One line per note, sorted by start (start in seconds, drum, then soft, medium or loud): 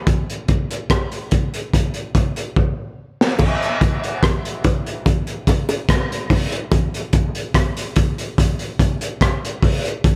0.07 kick loud
0.07 closed hi-hat medium
0.30 closed hi-hat soft
0.48 kick medium
0.48 closed hi-hat medium
0.71 closed hi-hat soft
0.90 kick loud
0.90 cross-stick loud
0.90 closed hi-hat medium
1.12 closed hi-hat soft
1.31 kick medium
1.31 closed hi-hat medium
1.54 closed hi-hat soft
1.74 kick loud
1.74 closed hi-hat loud
1.94 closed hi-hat soft
2.15 kick medium
2.15 closed hi-hat medium
2.36 closed hi-hat soft
2.56 kick medium
3.21 snare medium
3.39 kick loud
3.39 crash loud
3.39 high bongo medium
3.62 closed hi-hat soft
3.81 kick loud
3.81 closed hi-hat medium
4.04 closed hi-hat soft
4.23 kick loud
4.23 cross-stick loud
4.23 closed hi-hat medium
4.45 closed hi-hat medium
4.64 kick loud
4.64 closed hi-hat medium
4.64 low bongo medium
4.86 closed hi-hat medium
5.06 kick loud
5.06 closed hi-hat loud
5.06 high bongo medium
5.27 closed hi-hat soft
5.47 kick medium
5.47 closed hi-hat medium
5.47 high bongo medium
5.69 closed hi-hat medium
5.69 high bongo medium
5.89 kick loud
5.89 cross-stick medium
5.89 closed hi-hat medium
6.12 closed hi-hat soft
6.30 kick loud
6.30 open hi-hat medium
6.30 low bongo medium
6.52 closed hi-hat soft
6.72 kick loud
6.72 closed hi-hat loud
6.72 high bongo medium
6.94 closed hi-hat medium
7.13 kick loud
7.13 closed hi-hat medium
7.35 closed hi-hat soft
7.54 kick loud
7.54 cross-stick loud
7.54 closed hi-hat medium
7.77 closed hi-hat medium
7.96 kick loud
7.96 closed hi-hat medium
8.18 closed hi-hat medium
8.38 kick loud
8.38 closed hi-hat loud
8.59 closed hi-hat soft
8.79 kick medium
8.79 closed hi-hat medium
9.01 closed hi-hat medium
9.21 kick medium
9.21 cross-stick loud
9.21 closed hi-hat medium
9.45 closed hi-hat soft
9.63 kick medium
9.63 open hi-hat medium
9.85 closed hi-hat soft
10.04 kick loud
10.04 closed hi-hat medium